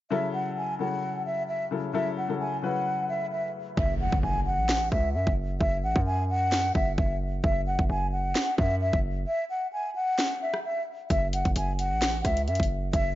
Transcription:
0.10 C#3 F#3 E4 A4 E5
0.33 F#5
0.57 G#5
0.79 C#3 F#3 E4 A4 F#5
1.26 E5
1.48 E5
1.71 C#3 F#3 E4 A4
1.93 C#3 F#3 E4 A4 E5
2.17 F#5
2.28 C#3 F#3 E4 A4
2.40 G#5
2.62 C#3 F#3 E4 B4 F#5
3.09 E5
3.32 E5
3.77 F#1 E5, kick, impact
4.01 F#5
4.12 F#1, kick
4.23 F#1 G#5
4.46 F#5
4.58 A1
4.69 snare
4.92 C#2 E5, kick
5.15 F#2 E5
5.27 F#1, kick
5.60 F#1 E5, kick
5.84 A1 F#5
5.96 F#2, kick
6.07 G#5
6.30 F#5
6.52 snare
6.75 F#1 E5, kick
6.98 F#1 E5, kick
7.44 F#1 E5, kick
7.67 F#5
7.79 F#1, kick
7.90 F#1 G#5
8.12 F#5
8.35 snare
8.58 F#2 E5, kick
8.81 E5
8.93 F#1, kick
9.27 E5
9.50 F#5
9.73 G#5
9.95 F#5
10.19 snare
10.42 E5
10.54 cross-stick
10.65 E5
11.10 F#1 E5, kick, closed hi-hat
11.33 F#5, closed hi-hat
11.45 F#1, kick, closed hi-hat
11.56 F#1 G#5, closed hi-hat
11.79 F#5, closed hi-hat
11.91 A1
12.02 snare, closed hi-hat
12.25 C#2 E5, kick, closed hi-hat
12.37 closed hi-hat
12.48 F#2 E5, closed hi-hat
12.55 closed hi-hat
12.60 F#1, kick, closed hi-hat
12.93 F#1 E5, kick, closed hi-hat

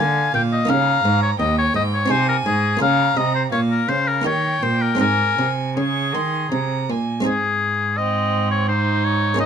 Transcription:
Already playing: A#3 F4
0.00 D3 A#4 F5 G#5
0.34 A#2 G5
0.53 D#5
0.65 A#3 D#4 G4 A#5
0.69 C#3 F5
1.04 G#2
1.23 C#5
1.39 D#2 D#5 G5
1.58 C#5
1.75 G#2 D#5
1.94 C#5
2.06 C4 D#4 G#4
2.10 C3 C5 G#5
2.29 A#4
2.46 G#2 G#4
2.77 A#3 F4 G#4 A#5
2.81 C#3 F5
3.17 C3 D#5
3.35 C5
3.51 A#2 C#5 F5
3.71 A#4
3.89 C#3 C5
4.08 A#4
4.22 D#3 A#3 D#4 G4
4.26 D#3 C#5 G5
4.62 A#2 C5
4.82 A#4
4.95 G#3 C4 D#4
5.00 G#2 G#4 A#4 G#5
5.38 C3
5.76 C#3 G#4 C#6
6.14 D#3 C6
6.52 C3 A#5
6.90 A#2 G#5
7.21 G#3 C4 D#4
7.25 G#2 G#4
7.97 C4 D#5
8.51 C#5
8.68 D#4 C5
9.05 C#5
9.34 G#3 A#3 C#4
9.39 D#4 F4 D#5

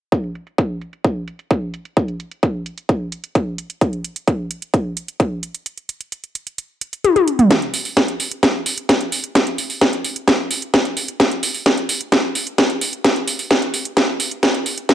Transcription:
0.12 kick, closed hi-hat
0.24 closed hi-hat
0.35 closed hi-hat
0.47 closed hi-hat
0.58 kick
0.81 closed hi-hat
0.93 closed hi-hat
1.05 kick
1.28 closed hi-hat
1.39 closed hi-hat
1.51 kick, closed hi-hat
1.74 closed hi-hat
1.85 closed hi-hat
1.97 kick, closed hi-hat
2.08 closed hi-hat
2.20 closed hi-hat
2.31 closed hi-hat
2.43 kick, closed hi-hat
2.66 closed hi-hat
2.78 closed hi-hat
2.89 kick, closed hi-hat
3.12 closed hi-hat
3.24 closed hi-hat
3.35 kick, closed hi-hat
3.58 closed hi-hat
3.70 closed hi-hat
3.81 kick, closed hi-hat
3.93 closed hi-hat
4.04 closed hi-hat
4.16 closed hi-hat
4.28 kick, closed hi-hat
4.51 closed hi-hat
4.62 closed hi-hat
4.74 kick, closed hi-hat
4.97 closed hi-hat
5.08 closed hi-hat
5.20 kick, closed hi-hat
5.43 closed hi-hat
5.54 closed hi-hat
5.66 closed hi-hat
5.78 closed hi-hat
5.89 closed hi-hat
6.01 closed hi-hat
6.12 closed hi-hat
6.24 closed hi-hat
6.35 closed hi-hat
6.47 closed hi-hat
6.58 closed hi-hat
6.81 closed hi-hat
6.93 closed hi-hat
7.04 closed hi-hat, high tom
7.16 closed hi-hat, high tom
7.28 closed hi-hat
7.39 closed hi-hat, mid tom
7.51 kick, snare, closed hi-hat
7.62 closed hi-hat
7.74 open hi-hat
7.85 open hi-hat
7.97 kick, snare, closed hi-hat
8.08 closed hi-hat
8.20 open hi-hat
8.31 closed hi-hat
8.43 kick, snare, closed hi-hat
8.66 open hi-hat
8.78 closed hi-hat
8.89 kick, snare, closed hi-hat
9.01 closed hi-hat
9.12 open hi-hat
9.24 closed hi-hat
9.35 kick, snare, closed hi-hat
9.47 closed hi-hat
9.58 open hi-hat
9.70 open hi-hat
9.81 kick, snare, closed hi-hat
9.93 closed hi-hat
10.05 open hi-hat
10.16 closed hi-hat
10.28 kick, snare, closed hi-hat
10.51 open hi-hat
10.62 closed hi-hat
10.74 kick, snare, closed hi-hat
10.85 closed hi-hat
10.97 open hi-hat
11.08 closed hi-hat
11.20 kick, snare, closed hi-hat
11.31 closed hi-hat
11.43 open hi-hat
11.54 open hi-hat
11.66 kick, snare, closed hi-hat
11.78 closed hi-hat
11.89 open hi-hat
12.01 closed hi-hat
12.12 kick, snare, closed hi-hat
12.35 open hi-hat
12.47 closed hi-hat
12.58 kick, snare, closed hi-hat
12.70 closed hi-hat
12.81 open hi-hat
12.93 closed hi-hat
13.04 kick, snare, closed hi-hat
13.16 closed hi-hat
13.28 open hi-hat
13.39 open hi-hat
13.51 kick, snare, closed hi-hat
13.62 closed hi-hat
13.74 open hi-hat
13.85 closed hi-hat
13.97 kick, snare, closed hi-hat
14.20 open hi-hat
14.31 closed hi-hat
14.43 kick, snare, closed hi-hat
14.55 closed hi-hat
14.66 open hi-hat
14.78 closed hi-hat
14.89 kick, snare, closed hi-hat

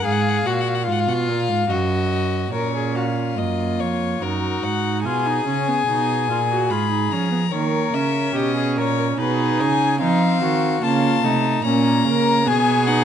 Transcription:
0.04 G#2 G#4 F5
0.12 F#5
0.21 F5
0.29 F#5
0.37 F5
0.46 A#2 F#4 F#5
0.53 F5
0.61 F#5
0.69 F5
0.75 F#5
0.83 G#2 F4 F5
0.92 F#5
1.00 F5
1.07 B2 F#5
1.14 F5
1.28 A#2
1.49 G#2
1.70 F#2 F#4 D#5
2.53 A#2 C#4 A#4 C#5
2.76 G#4
2.96 F#4 F5
3.18 F4
3.37 F#2 A#3 D#5
3.79 F2 C#5
4.21 F#2 D#4 F#4 A#4
4.63 G#2 F#5
5.04 B2 F4 G#4 G#5
5.26 D#4
5.46 C#3 C#4
5.68 B3
5.87 B2 D#4
6.28 A#2 F4
6.51 F#4
6.70 G#2 F4 G#4 B5
6.91 D#4
7.12 F3 C#4 A#5
7.32 B3
7.52 D#3 A#3 A#4 C#5
7.93 C#3 C#4 E5
8.35 B2 G4 D#5
8.57 G#4
8.77 A#2 A#4 C#5
8.98 A#4
9.17 B2 D#4 G#4 B4
9.60 C#3 G#5
10.01 F3 C4 D#4 F5
10.42 D#3 F#4
10.82 C#3 A#3 F4 A5
11.23 C3 A3 D#4
11.64 A#2 A#3 C#4 A#5
12.05 C#3 A#4
12.45 B2 B3 G#4 G#5
12.87 D#4 F#5

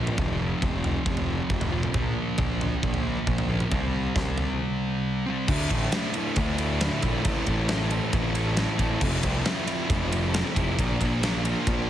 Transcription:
Already playing: F3 A#3
0.00 A#2
0.07 mid tom
0.18 F1 F2 C3 F3, kick, floor tom
0.62 F1, kick, floor tom
0.84 floor tom
1.06 F1, kick
1.17 floor tom
1.50 F1, kick
1.61 floor tom, mid tom
1.72 F2 C3 F3
1.83 mid tom
1.93 A#1 A#2 F3 A#3, kick, floor tom
2.38 A#1, kick, floor tom
2.61 floor tom
2.83 A#1, kick
2.94 floor tom
3.27 A#1, kick
3.38 floor tom, mid tom
3.49 F3 A#3
3.53 A#2
3.60 mid tom
3.69 C2 C3 G3, kick, floor tom
3.74 C4
4.15 C2, kick, snare, floor tom
4.38 floor tom
5.26 G3 C4
5.30 C3
5.48 D2 A2 D3 A3 E4, kick, crash
5.68 A1 D3 A3 E4, kick, ride
5.92 A2 D3 A3 E4, snare, ride
6.14 D2 A2 D3 A3 E4, ride
6.36 D2 A2 D3 A3, kick, ride
6.40 E4
6.58 D2 A2 D3 A3 E4, ride
6.81 A2 D3 A3 E4, snare, ride
7.02 A#1 A3 E4, kick, ride
7.07 D3
7.25 A1 A2 E3 A3 C4 E4, kick, ride
7.29 A4
7.46 A1 C4 E4 A4, kick, ride
7.51 A3
7.69 A3 C4 E4 A4, snare, ride
7.81 snare
7.91 A3 C4 E4 A4, ride
7.95 A2 E3
8.12 A1 A3 C4 E4 A4, kick, ride
8.35 A2 E3 A3 C4 E4 A4, ride
8.57 A3 C4 E4, snare, ride
8.61 A4
8.79 A1 A3 C4 E4 A4, kick, ride
9.01 F1 F2 C3 F3 A3 C4 E4, kick, crash
9.22 C2 F3 A3 C4 E4, kick, ride
9.44 F3 A3 C4, snare, ride
9.48 E4
9.67 F2 C3 F3 A3 C4 E4, ride
9.88 F1 F3 A3 C4 E4, kick, ride
10.10 C3 F3 A3 C4 E4, ride
10.14 F2
10.33 F3 A3 C4 E4, snare, ride
10.54 F1 F3 A3 C4 E4, kick, ride
10.77 A#1 A#2 F3 A#3 D4 F4 A#4, kick, ride
11.00 A#1 A#3 D4 F4 A#4, kick, ride
11.22 A#3 D4 F4 A#4, snare, ride
11.45 F3 A#3 D4 F4 A#4, ride
11.49 A#2
11.67 A#1 A#3 D4 F4, kick, ride
11.71 A#4

